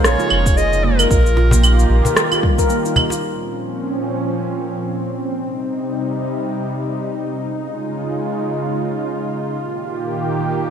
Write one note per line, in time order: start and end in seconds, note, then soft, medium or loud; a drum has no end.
0.00 1.08 C#3 medium
0.00 1.08 G#3 medium
0.00 1.06 D#4 medium
0.00 1.08 F4 medium
0.04 0.16 A#1 medium
0.04 0.18 C#4 loud
0.04 0.58 C#5 loud
0.04 cross-stick medium
0.04 cabasa medium
0.19 0.30 F4 medium
0.19 cajon slap soft
0.19 cabasa soft
0.30 1.06 F1 loud
0.30 claves medium
0.46 kick loud
0.46 cabasa medium
0.57 0.72 G#4 loud
0.57 0.85 D#5 loud
0.57 cabasa medium
0.73 cabasa soft
0.84 0.98 A#3 medium
0.84 2.70 A#4 loud
0.99 1.09 A#4 medium
0.99 cabasa medium
0.99 claves medium
1.09 1.85 A#1 loud
1.09 3.20 D#3 medium
1.09 3.20 A#3 medium
1.09 3.20 F4 medium
1.09 1.36 F4 medium
1.09 3.20 G4 medium
1.09 kick loud
1.09 cabasa medium
1.26 cabasa soft
1.37 1.51 F4 loud
1.37 cajon slap medium
1.51 2.04 A#3 medium
1.51 cajon bass medium
1.51 cabasa medium
1.63 cabasa medium
1.63 claves medium
1.79 cabasa soft
1.90 2.01 A#1 loud
2.05 2.30 A#4 medium
2.05 cajon bass medium
2.05 cabasa medium
2.17 cross-stick medium
2.17 cabasa medium
2.32 2.43 F4 medium
2.32 cajon slap soft
2.32 cabasa soft
2.32 claves medium
2.43 2.57 G3 medium
2.43 kick loud
2.58 2.70 A#4 loud
2.58 kick medium
2.58 cabasa medium
2.70 2.84 A#3 medium
2.70 cabasa medium
2.85 2.95 D#4 medium
2.85 cabasa soft
2.96 cajon bass medium
2.96 claves medium
3.10 3.18 F4 medium
3.10 cajon slap medium
3.10 cabasa medium
3.23 5.33 A#2 medium
3.23 5.33 F3 medium
3.23 7.44 C4 medium
3.23 5.33 C#4 medium
3.23 cabasa soft
3.50 cabasa medium
3.65 cabasa soft
3.76 cabasa soft
4.03 cabasa medium
4.18 cabasa soft
4.30 cabasa soft
4.56 cabasa medium
4.71 cabasa soft
4.83 cabasa soft
5.09 cabasa medium
5.24 cabasa soft
5.35 7.45 C3 medium
5.35 7.45 G3 medium
5.35 9.56 D#4 medium
5.35 cabasa soft
5.62 cabasa medium
5.77 cabasa soft
5.89 cabasa soft
6.15 cabasa medium
6.30 cabasa soft
6.42 cabasa soft
6.68 cabasa medium
6.84 cabasa soft
6.95 cabasa soft
7.22 cabasa medium
7.37 cabasa soft
7.47 9.58 C#3 medium
7.47 9.58 G#3 medium
7.47 10.70 F4 medium
7.47 cabasa soft
7.74 cabasa medium
7.89 cabasa soft
8.01 cabasa soft
8.27 cabasa medium
8.42 cabasa soft
8.54 cabasa soft
8.80 cabasa medium
8.96 cabasa soft
9.07 cabasa soft
9.33 cabasa medium
9.48 cabasa soft
9.60 10.70 A#2 medium
9.60 10.70 D#3 medium
9.60 10.70 A#3 medium
9.60 10.70 G4 medium
9.60 cabasa soft
9.86 cabasa medium
10.02 cabasa soft
10.13 cabasa soft
10.40 cabasa medium
10.55 cabasa soft
10.66 cabasa soft